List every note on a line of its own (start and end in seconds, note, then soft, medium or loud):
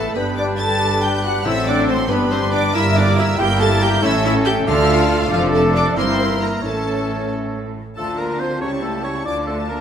0.00 0.16 A1 medium
0.00 0.16 A2 medium
0.00 0.15 A3 loud
0.00 0.15 A3 medium
0.00 0.16 A3 medium
0.00 0.16 A4 loud
0.00 0.15 A5 loud
0.00 0.16 B5 medium
0.14 1.41 G1 medium
0.14 1.42 G2 medium
0.14 1.41 G3 medium
0.14 1.42 G3 medium
0.14 0.38 B3 loud
0.14 1.42 D4 medium
0.14 0.23 B4 loud
0.14 1.42 B4 medium
0.14 0.38 B4 medium
0.14 0.81 G5 medium
0.14 0.36 B5 loud
0.36 0.59 D4 loud
0.36 0.59 D5 medium
0.36 0.44 D5 loud
0.36 0.44 D6 loud
0.57 1.01 A4 loud
0.57 1.01 A5 loud
0.57 1.02 A5 loud
0.57 1.01 A6 loud
0.80 1.44 D5 loud
1.01 1.24 G4 medium
1.01 1.24 G5 loud
1.01 1.24 G5 medium
1.01 1.23 G6 loud
1.23 1.31 F#4 medium
1.23 1.45 F#5 loud
1.23 1.46 F#5 loud
1.23 1.45 F#6 loud
1.45 2.08 A1 medium
1.45 2.08 A2 loud
1.45 2.06 A2 loud
1.45 2.12 F#3 loud
1.45 2.09 F#3 medium
1.45 2.09 C4 medium
1.45 1.53 E4 loud
1.45 2.09 A4 loud
1.45 2.11 C5 medium
1.45 1.52 E5 loud
1.45 1.67 E5 loud
1.45 1.67 E6 loud
1.67 1.88 D4 loud
1.67 1.89 D5 loud
1.67 1.88 D5 loud
1.67 1.88 D6 loud
1.88 2.10 C4 loud
1.88 1.96 C5 loud
1.88 2.10 C5 loud
1.88 2.10 C6 loud
2.09 2.73 G1 medium
2.09 2.73 G2 medium
2.09 2.75 G3 medium
2.09 2.74 G3 loud
2.09 2.31 B3 loud
2.09 2.76 D4 medium
2.09 2.75 D4 loud
2.09 2.17 B4 loud
2.09 2.31 B4 loud
2.09 2.76 B4 medium
2.09 2.73 D5 loud
2.09 2.31 B5 loud
2.31 2.39 C4 loud
2.31 2.53 C5 loud
2.31 2.39 C5 loud
2.31 2.53 C6 loud
2.51 2.74 D4 loud
2.51 2.59 D5 loud
2.51 2.74 D5 loud
2.51 2.74 D6 loud
2.74 3.28 G1 loud
2.74 3.28 G2 loud
2.74 3.38 G3 loud
2.74 3.38 A#3 medium
2.74 3.38 E4 medium
2.74 3.37 E4 loud
2.74 2.83 E4 loud
2.74 3.38 A#4 loud
2.74 4.00 E5 loud
2.74 2.95 E5 loud
2.74 2.96 E5 loud
2.74 2.96 E6 loud
2.95 3.05 D4 loud
2.95 3.17 D5 loud
2.95 3.18 D5 loud
2.95 3.17 D6 loud
3.16 3.26 E4 loud
3.16 3.22 E5 loud
3.16 3.39 E5 loud
3.16 3.39 E6 loud
3.38 3.92 G1 loud
3.38 3.93 G2 loud
3.38 4.02 G3 loud
3.38 4.02 A#3 loud
3.38 4.05 E4 loud
3.38 4.02 E4 loud
3.38 3.47 G4 loud
3.38 4.04 A#4 loud
3.38 3.60 G5 loud
3.38 3.44 G5 loud
3.38 3.61 G6 loud
3.59 3.67 A4 loud
3.59 3.66 A5 loud
3.59 3.82 A5 loud
3.59 3.82 A6 loud
3.81 4.02 G4 loud
3.81 4.03 G5 loud
3.81 3.88 G5 loud
3.81 4.03 G6 loud
4.02 4.56 A1 loud
4.02 4.57 A2 loud
4.02 4.65 A3 loud
4.02 4.66 A3 loud
4.02 4.67 C#4 loud
4.02 4.66 C#4 loud
4.02 4.11 E4 loud
4.02 4.67 A4 loud
4.02 4.44 C#5 loud
4.02 4.23 E5 loud
4.02 4.10 E5 loud
4.02 4.24 E6 loud
4.24 4.33 E4 loud
4.24 4.32 E5 loud
4.24 4.31 E5 loud
4.24 4.33 E6 loud
4.45 4.53 G4 loud
4.45 4.53 G5 loud
4.45 4.67 G5 loud
4.45 4.53 G6 loud
4.66 5.21 D2 loud
4.66 5.21 D3 loud
4.66 5.30 A3 loud
4.66 5.30 D4 loud
4.66 5.14 D4 medium
4.66 5.30 F4 loud
4.66 5.30 A4 loud
4.66 4.85 D5 loud
4.66 5.02 F5 loud
4.66 5.30 F5 loud
4.66 5.31 F6 loud
4.86 4.96 E5 loud
5.07 5.17 F5 loud
5.29 5.93 F1 loud
5.29 5.93 F2 loud
5.29 5.92 F3 loud
5.29 5.53 F3 loud
5.29 5.99 A3 loud
5.29 5.95 D4 loud
5.29 5.92 D4 medium
5.29 5.53 F4 loud
5.29 5.38 F4 loud
5.29 5.99 A4 loud
5.29 5.96 D5 loud
5.29 5.40 F5 loud
5.52 5.74 A3 loud
5.52 5.74 A4 loud
5.52 5.62 A5 loud
5.74 5.96 D4 loud
5.74 5.96 D5 loud
5.74 5.97 D5 loud
5.74 5.84 D6 loud
5.95 6.63 G1 medium
5.95 6.63 G2 loud
5.95 6.62 E3 medium
5.95 6.40 A#3 medium
5.95 6.40 C4 loud
5.95 6.39 E4 medium
5.95 6.62 E4 loud
5.95 6.63 A#4 loud
5.95 6.40 C5 loud
5.95 6.41 C5 medium
5.95 6.61 E5 loud
5.95 6.40 C6 loud
6.41 6.63 A#3 medium
6.41 6.47 A#4 loud
6.41 6.63 A#4 medium
6.41 6.64 A#5 loud
6.62 7.74 A1 medium
6.62 7.74 A2 medium
6.62 7.72 E3 medium
6.62 7.71 A3 medium
6.62 7.30 A3 medium
6.62 7.71 C#4 medium
6.62 7.75 C#4 medium
6.62 7.28 A4 medium
6.62 7.73 A4 medium
6.62 7.61 C#5 medium
6.62 7.31 A5 loud
6.66 7.30 A4 medium
7.96 8.59 D2 medium
7.96 8.59 D3 medium
7.96 8.64 F3 medium
7.96 8.07 A3 medium
7.96 8.58 D4 medium
7.96 8.58 F4 medium
7.96 8.65 F4 medium
7.96 8.19 A4 medium
7.96 8.17 A5 loud
7.96 9.81 A5 medium
7.96 8.59 A5 medium
8.18 8.40 A#3 medium
8.18 8.41 A#4 loud
8.18 8.40 A#5 medium
8.40 8.62 C4 medium
8.40 8.61 C5 loud
8.40 8.62 C6 medium
8.61 9.27 C#2 medium
8.61 9.27 C#3 medium
8.61 9.26 G3 medium
8.61 8.84 C#4 medium
8.61 9.28 E4 medium
8.61 9.27 E4 medium
8.61 9.26 G4 medium
8.61 8.71 C#5 medium
8.61 9.26 A5 medium
8.61 8.83 C#6 medium
8.83 9.05 A3 medium
8.83 9.04 A4 loud
8.83 9.05 A5 medium
9.03 9.26 C#4 medium
9.03 9.25 C#5 medium
9.03 9.27 C#6 medium
9.25 9.81 D2 medium
9.25 9.81 D3 medium
9.25 9.81 F3 medium
9.25 9.47 D4 medium
9.25 9.81 D4 medium
9.25 9.81 F4 medium
9.25 9.46 D5 loud
9.25 9.81 A5 medium
9.25 9.35 D6 medium
9.47 9.70 A3 medium
9.47 9.57 A4 medium
9.47 9.69 A5 medium
9.69 9.81 A#3 medium
9.69 9.81 A#4 medium
9.69 9.81 A#5 medium